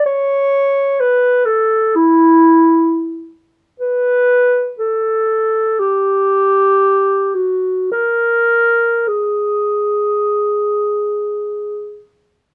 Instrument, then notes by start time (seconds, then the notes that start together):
clarinet
0.06 C#5
1.00 B4
1.45 A4
1.96 E4
3.80 B4
4.79 A4
5.79 G4
7.35 F#4
7.92 A#4
9.08 G#4